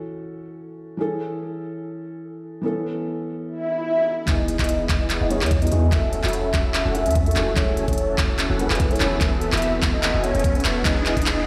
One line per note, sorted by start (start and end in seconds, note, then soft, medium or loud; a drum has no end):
0.00 0.96 E3 medium
0.00 0.96 C#4 medium
0.00 0.97 F#4 medium
0.00 0.98 A4 medium
0.97 2.60 E3 medium
0.97 2.61 C#4 medium
0.97 2.61 G#4 medium
0.97 2.62 A4 medium
2.61 4.24 E3 medium
2.61 4.25 B3 medium
2.61 4.26 C#4 medium
2.66 4.27 A4 medium
3.46 swell medium
4.26 4.57 E1 medium
4.26 5.28 E3 medium
4.26 5.28 B3 medium
4.26 4.57 B3 medium
4.26 5.29 D#4 medium
4.26 4.57 E4 medium
4.26 4.57 G#4 medium
4.26 4.55 D#5 loud
4.26 4.57 D#5 medium
4.26 4.57 G#5 medium
4.26 kick loud
4.26 clap soft
4.26 closed hi-hat medium
4.26 riser medium
4.30 5.30 G#4 medium
4.48 closed hi-hat medium
4.59 4.88 E1 medium
4.59 4.87 B3 medium
4.59 4.87 E4 medium
4.59 4.87 G#4 medium
4.59 4.95 D#5 medium
4.59 4.87 D#5 medium
4.59 4.87 B5 loud
4.59 kick medium
4.59 clap soft
4.59 closed hi-hat soft
4.64 closed hi-hat medium
4.69 closed hi-hat medium
4.89 5.19 E1 medium
4.89 5.18 B3 medium
4.89 5.18 E4 medium
4.89 5.18 G#4 medium
4.89 5.18 D#5 medium
4.89 5.18 B5 medium
4.89 kick loud
4.89 clap soft
4.89 closed hi-hat medium
5.00 5.27 D#5 medium
5.10 clap soft
5.10 closed hi-hat medium
5.21 5.43 E1 medium
5.21 5.39 B3 medium
5.21 5.39 E4 medium
5.21 5.39 G#4 medium
5.21 5.39 D#5 medium
5.21 5.39 F#5 medium
5.30 5.38 E3 medium
5.30 5.38 B3 medium
5.30 5.38 D#4 medium
5.30 5.39 G#4 medium
5.30 5.58 C#5 medium
5.30 closed hi-hat medium
5.41 5.70 E2 medium
5.41 5.69 B3 medium
5.41 5.69 E4 medium
5.41 5.69 G#4 medium
5.41 5.69 D#5 medium
5.41 5.69 G#5 medium
5.41 clap soft
5.41 closed hi-hat soft
5.46 closed hi-hat medium
5.51 kick loud
5.51 closed hi-hat medium
5.61 5.69 E3 medium
5.61 5.69 B3 medium
5.61 5.70 D#4 medium
5.61 5.70 F#4 medium
5.61 5.88 D#5 medium
5.61 closed hi-hat soft
5.67 5.89 E3 medium
5.67 closed hi-hat medium
5.71 5.90 E2 loud
5.71 5.90 B3 medium
5.71 5.90 D#4 medium
5.71 5.90 E4 medium
5.71 5.90 G#4 medium
5.71 5.90 G#4 loud
5.71 5.90 D#5 medium
5.71 5.90 C#6 loud
5.71 closed hi-hat medium
5.90 6.22 E1 loud
5.90 6.92 C#4 medium
5.90 6.21 C#4 medium
5.90 6.21 F#4 medium
5.90 6.93 F#4 medium
5.90 6.21 A4 medium
5.90 6.21 E5 medium
5.90 6.19 E5 loud
5.90 6.21 A5 medium
5.90 kick loud
5.90 clap soft
5.90 closed hi-hat medium
5.94 6.94 A4 loud
6.13 closed hi-hat medium
6.24 6.52 E1 loud
6.24 6.51 C#4 loud
6.24 6.51 F#4 medium
6.24 6.51 A4 medium
6.24 6.51 E5 medium
6.24 6.59 E5 medium
6.24 6.52 B5 loud
6.24 clap soft
6.24 closed hi-hat soft
6.28 closed hi-hat medium
6.33 closed hi-hat medium
6.54 6.83 E1 medium
6.54 6.83 C#4 medium
6.54 6.83 F#4 medium
6.54 6.83 A4 medium
6.54 6.83 E5 medium
6.54 6.83 B5 loud
6.54 kick loud
6.54 clap soft
6.54 closed hi-hat medium
6.65 6.91 E5 loud
6.74 clap medium
6.74 closed hi-hat medium
6.85 7.07 E1 medium
6.85 7.03 C#4 medium
6.85 7.03 F#4 medium
6.85 7.03 A4 medium
6.85 7.03 E5 medium
6.85 7.03 F#5 medium
6.94 7.02 C#4 medium
6.94 7.03 F#4 medium
6.94 7.03 A4 medium
6.94 7.22 E5 medium
6.94 closed hi-hat medium
7.06 7.34 E2 medium
7.06 7.34 C#4 medium
7.06 7.34 F#4 medium
7.06 7.34 A4 medium
7.06 7.34 E5 medium
7.06 7.34 A5 loud
7.06 closed hi-hat soft
7.11 closed hi-hat medium
7.15 kick loud
7.15 closed hi-hat medium
7.25 7.33 C#4 medium
7.25 7.34 F#4 medium
7.25 7.34 A4 medium
7.25 7.53 E5 medium
7.25 closed hi-hat soft
7.31 7.54 C#4 medium
7.31 closed hi-hat medium
7.36 7.55 E1 medium
7.36 7.54 C#4 medium
7.36 7.54 F#4 medium
7.36 7.54 A4 medium
7.36 7.55 A4 loud
7.36 7.54 E5 medium
7.36 7.54 C#6 loud
7.36 clap medium
7.36 closed hi-hat medium
7.54 7.86 E1 loud
7.54 8.56 E3 medium
7.54 8.57 C#4 medium
7.54 7.85 C#4 medium
7.54 7.85 F#4 medium
7.54 8.58 G#4 medium
7.54 7.85 A4 medium
7.54 7.84 C#5 loud
7.54 7.85 E5 medium
7.54 7.85 G#5 medium
7.54 kick loud
7.54 clap medium
7.54 closed hi-hat medium
7.58 8.58 A4 loud
7.77 closed hi-hat medium
7.88 8.16 E1 medium
7.88 8.16 C#4 medium
7.88 8.16 F#4 medium
7.88 8.16 A4 medium
7.88 8.23 C#5 medium
7.88 8.16 E5 medium
7.88 8.16 A5 loud
7.88 kick medium
7.88 closed hi-hat soft
7.93 closed hi-hat medium
7.98 closed hi-hat medium
8.18 8.48 E1 medium
8.18 8.47 C#4 medium
8.18 8.47 F#4 medium
8.18 8.47 A4 medium
8.18 8.47 E5 medium
8.18 8.47 A5 loud
8.18 kick loud
8.18 clap medium
8.18 closed hi-hat medium
8.29 8.55 C#5 medium
8.39 clap medium
8.39 closed hi-hat medium
8.50 8.68 E1 medium
8.50 8.68 C#4 medium
8.50 8.68 F#4 medium
8.50 8.68 A4 medium
8.50 8.68 E5 medium
8.50 8.68 F#5 loud
8.58 8.66 E3 medium
8.58 8.67 C#4 medium
8.58 8.67 G#4 medium
8.58 8.67 A4 medium
8.58 8.92 B4 loud
8.58 closed hi-hat medium
8.70 8.99 E1 medium
8.70 8.98 C#4 medium
8.70 8.98 F#4 medium
8.70 8.98 A4 medium
8.70 8.98 E5 medium
8.70 8.98 G#5 loud
8.70 clap medium
8.70 closed hi-hat soft
8.75 closed hi-hat medium
8.80 kick loud
8.80 closed hi-hat medium
8.90 8.98 E3 medium
8.90 8.98 C#4 medium
8.90 8.98 G#4 medium
8.90 8.99 A4 medium
8.90 9.17 C#5 medium
8.90 closed hi-hat soft
8.96 9.17 E3 medium
8.96 closed hi-hat medium
9.00 9.19 E1 medium
9.00 9.18 C#4 medium
9.00 9.19 C#4 medium
9.00 9.19 F#4 medium
9.00 9.19 G#4 medium
9.00 9.19 A4 medium
9.00 9.19 A4 loud
9.00 9.19 E5 medium
9.00 9.19 B5 loud
9.00 clap medium
9.00 closed hi-hat medium
9.19 9.50 E1 loud
9.19 10.21 E3 medium
9.19 10.21 B3 medium
9.19 9.50 B3 medium
9.19 10.22 C#4 medium
9.19 9.50 F#4 medium
9.19 9.50 A4 medium
9.19 9.48 E5 loud
9.19 9.50 E5 medium
9.19 9.50 A5 medium
9.19 kick loud
9.19 clap medium
9.19 closed hi-hat medium
9.23 10.23 A4 loud
9.41 closed hi-hat medium
9.52 9.81 E1 loud
9.52 9.80 B3 medium
9.52 9.80 F#4 medium
9.52 9.80 A4 medium
9.52 9.88 E5 medium
9.52 9.80 E5 medium
9.52 9.80 B5 loud
9.52 clap medium
9.52 closed hi-hat soft
9.57 closed hi-hat medium
9.62 closed hi-hat medium
9.83 10.12 E1 medium
9.83 10.12 B3 medium
9.83 10.12 F#4 medium
9.83 10.12 A4 medium
9.83 10.12 E5 medium
9.83 10.12 B5 loud
9.83 kick loud
9.83 clap medium
9.83 closed hi-hat medium
9.93 10.20 D#5 medium
10.03 clap medium
10.03 closed hi-hat medium
10.14 10.32 E1 medium
10.14 10.32 B3 medium
10.14 10.32 F#4 medium
10.14 10.32 A4 medium
10.14 10.32 E5 medium
10.14 10.32 G#5 loud
10.24 10.57 C#5 loud
10.24 closed hi-hat medium
10.35 10.63 E1 medium
10.35 10.62 B3 medium
10.35 10.62 F#4 medium
10.35 10.62 A4 medium
10.35 10.62 E5 medium
10.35 10.62 G#5 loud
10.35 closed hi-hat soft
10.39 closed hi-hat medium
10.44 kick loud
10.44 closed hi-hat medium
10.55 10.81 B4 loud
10.55 closed hi-hat soft
10.60 closed hi-hat medium
10.65 10.83 E1 medium
10.65 10.83 B3 medium
10.65 10.83 F#4 medium
10.65 10.83 A4 medium
10.65 10.83 E5 medium
10.65 10.83 C#6 medium
10.65 clap medium
10.65 closed hi-hat medium
10.83 11.15 E1 loud
10.83 11.47 E3 medium
10.83 11.47 B3 medium
10.83 11.14 B3 medium
10.83 11.47 D#4 medium
10.83 11.14 E4 medium
10.83 11.14 G#4 medium
10.83 11.12 D#5 loud
10.83 11.14 D#5 medium
10.83 11.14 G#5 medium
10.83 kick loud
10.83 clap medium
10.83 closed hi-hat medium
10.87 11.47 G#4 loud
11.06 clap medium
11.06 closed hi-hat medium
11.17 11.45 E1 loud
11.17 11.45 B3 medium
11.17 11.45 E4 medium
11.17 11.45 G#4 medium
11.17 11.47 D#5 medium
11.17 11.45 D#5 medium
11.17 11.45 B5 loud
11.17 kick medium
11.17 closed hi-hat soft
11.22 closed hi-hat medium
11.26 clap medium
11.26 closed hi-hat medium